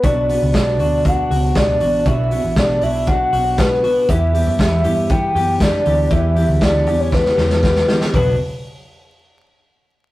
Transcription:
<<
  \new Staff \with { instrumentName = "Soft synth lead" } { \time 4/4 \key b \minor \tempo 4 = 119 d''4 d''4 fis''4 d''4 | e''4 d''8 e''8 fis''4 b'4 | e''4 e''4 g''4 d''4 | e''4 d''8. cis''16 b'4 b'8. r16 |
b'8 r2. r8 | }
  \new Staff \with { instrumentName = "Clean electric guitar" } { \time 4/4 \key b \minor <b, fis'>8 b8 d'8 fis'8 d'8 fis'8 b8 fis'8 | <b, fis'>8 b8 d'8 fis'8 d'8 fis'8 b8 fis'8 | <e, g'>8 g8 b8 g'8 b8 g'8 g8 g'8 | <e, g'>8 g8 b8 g'8 b8 g'8 g8 g'8 |
<b, fis b d' fis'>8 r2. r8 | }
  \new Staff \with { instrumentName = "Steel-string acoustic guitar" } { \time 4/4 \key b \minor <b, fis b d' fis'>8 <b d' fis'>8 <b, fis b d' fis'>8 <b d' fis'>8 <fis b d' fis'>8 <b d' fis'>8 <b, fis b d' fis'>8 <b d' fis'>8 | <b, fis b d' fis'>8 <b d' fis'>8 <b, fis b d' fis'>8 <b d' fis'>8 <fis b d' fis'>8 <b d' fis'>8 <b, fis b d' fis'>8 <b d' fis'>8 | <e b e' g'>8 <b e' g'>8 <e b e' g'>8 <b e' g'>8 <e b e' g'>8 <b e' g'>8 <e b e' g'>8 <b e' g'>8 | <e b e' g'>8 <b e' g'>8 <e b e' g'>8 <b e' g'>8 <e b e' g'>8 <b e' g'>8 <e b e' g'>8 <b e' g'>8 |
<b, fis b d' fis'>8 r2. r8 | }
  \new Staff \with { instrumentName = "Picked electric bass" } { \clef bass \time 4/4 \key b \minor b,,8. cis,16 b,,8 d,4 cis,4 a,,8 | b,,8. a,,8. b,,4 b,,4 r8 | e,8. fis,16 e,8 g,4 fis,4 d,8 | e,8. d,8. e,4 e,4 r8 |
b,,8 r2. r8 | }
  \new DrumStaff \with { instrumentName = "Drums" } \drummode { \time 4/4 <hh bd>8 hho8 <hh bd sn>8 hho8 <hh bd>8 hho8 <hh bd sn>8 hho8 | <hh bd>8 hho8 <hh bd sn>8 hho8 <hh bd>8 hho8 <hh bd sn>8 hho8 | <hh bd>8 hho8 <hh bd sn>8 hho8 <hh bd>8 hho8 <hh bd sn>8 hho8 | <hh bd>8 hho8 <hh bd sn>8 hho8 <bd sn>16 sn16 sn16 sn16 <bd sn>16 sn16 sn16 sn16 |
<hho bd tomfh>4 r4 r4 r4 | }
>>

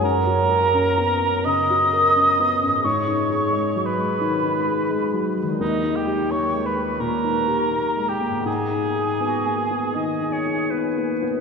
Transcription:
<<
  \new Staff \with { instrumentName = "Flute" } { \time 4/4 \key gis \minor \tempo 4 = 85 ais''2 dis'''2 | cis'''4. b''2 r8 | dis''8 g''8 cis'''8 b''8 ais''4. g''8 | gis''2. r4 | }
  \new Staff \with { instrumentName = "Clarinet" } { \time 4/4 \key gis \minor r1 | r1 | r1 | r4 fis'8 gis'8 dis''8 cis''8 b'4 | }
  \new Staff \with { instrumentName = "Cor anglais" } { \time 4/4 \key gis \minor ais'2 dis''2 | cis''4. b'2 r8 | dis'8 g'8 cis''8 b'8 ais'4. g'8 | gis'2. r4 | }
  \new Staff \with { instrumentName = "Harp" } { \time 4/4 \key gis \minor <fis, ais fis' cis''>1 | <gis, gis dis' gis'>1 | <dis g dis' g'>1 | <gis, b dis' gis'>1 | }
  \new Staff \with { instrumentName = "Felt piano" } { \time 4/4 \key gis \minor \tuplet 3/2 { fis,8 fis'8 ais'8 cis'8 b8 cis'8 cis8 fis'8 ais'8 cis'8 b8 cis'8 } | \tuplet 3/2 { gis,8 dis'8 gis'8 gis8 fis8 gis8 dis8 dis'8 gis'8 gis8 fis8 gis8 } | \tuplet 3/2 { dis,8 dis'8 g'8 ais8 gis8 ais8 ais,8 dis'8 g'8 ais8 gis8 ais8 } | \tuplet 3/2 { gis,8 dis'8 gis'8 b8 ais8 b8 dis8 dis'8 gis'8 b8 ais8 b8 } | }
>>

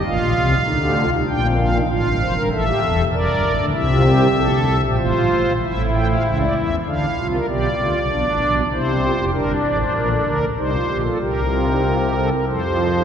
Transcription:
<<
  \new Staff \with { instrumentName = "Pipe organ" } { \time 3/4 \key f \mixolydian \tempo 4 = 97 << { f''2 g''8 f''8 | f''4 e''4 d''4 | e''2 c''4 | e''8 g''16 f''16 e''16 d''16 e''8 f''8. bes'16 |
d''2 c''4 | bes'8 d''16 c''16 bes'16 a'16 bes'8 c''8. f'16 | bes'2 c''4 | } \\ { f'4 ees'16 g'16 f'16 ees'16 d'16 c'16 d'16 ees'16 | f'8 c''16 bes'16 a'16 g'16 a'8 bes'8. d'16 | e'16 f'16 g'8 a'8. g'16 f'4 | e'2 d'8 f'8 |
g'8 f'8 d'4 e'8 f'16 g'16 | d'2 ees'16 f'16 g'16 a'16 | g'8 f'16 ees'16 f'16 g'16 a'16 bes'16 a'16 g'16 f'16 ees'16 | } >> }
  \new Staff \with { instrumentName = "Pipe organ" } { \clef bass \time 3/4 \key f \mixolydian <a,, a,>16 <bes,, bes,>16 <c, c>8 <d, d>8. <c, c>16 <bes,, bes,>4 | <a,, a,>16 <g,, g,>16 <f,, f,>16 <g,, g,>16 <a,, a,>8 <e,, e,>8 <f,, f,>16 <g,, g,>16 <a,, a,>16 <d, d>16 | <c, c>4 <bes,, bes,>16 <d, d>16 <c, c>16 <bes,, bes,>16 <a,, a,>16 <g,, g,>16 <a,, a,>16 <bes,, bes,>16 | <a,, a,>4 <cis, cis>8 <e, e>8 <d, d>8 <c, c>8 |
<b,, b,>8 <d, d>16 <c, c>16 <b,, b,>16 <a,, a,>16 <b,, b,>8 <c, c>8. <f,, f,>16 | <g,, g,>8 <a,, a,>8 <bes,, bes,>8 <d, d>8 <c, c>8 <bes,, bes,>8 | <c, c>2 <f, f>4 | }
>>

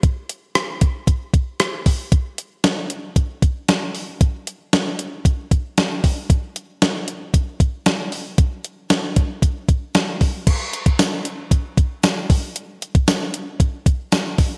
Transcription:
\new DrumStaff \with { instrumentName = "Drums" } \drummode { \time 4/4 \tempo 4 = 115 <hh bd>8 hh8 <hh ss>8 <hh bd>8 <hh bd>8 <hh bd>8 <hh ss>8 <hho bd>8 | <hh bd>8 hh8 <hh sn>8 hh8 <hh bd>8 <hh bd>8 <hh sn>8 hho8 | <hh bd>8 hh8 <hh sn>8 hh8 <hh bd>8 <hh bd>8 <hh sn>8 <hho bd>8 | <hh bd>8 hh8 <hh sn>8 hh8 <hh bd>8 <hh bd>8 <hh sn>8 hho8 |
<hh bd>8 hh8 <hh sn>8 <hh bd>8 <hh bd>8 <hh bd>8 <hh sn>8 <hho bd>8 | <cymc hh bd>8 hh16 <hh bd>16 <hh sn tamb>8 hh8 <hh bd>8 <hh bd>8 <hh sn tamb>8 <hho bd>8 | hh8 hh16 <hh bd>16 <hh sn tamb>8 hh8 <hh bd>8 <hh bd>8 <hh sn tamb>8 <hho bd>8 | }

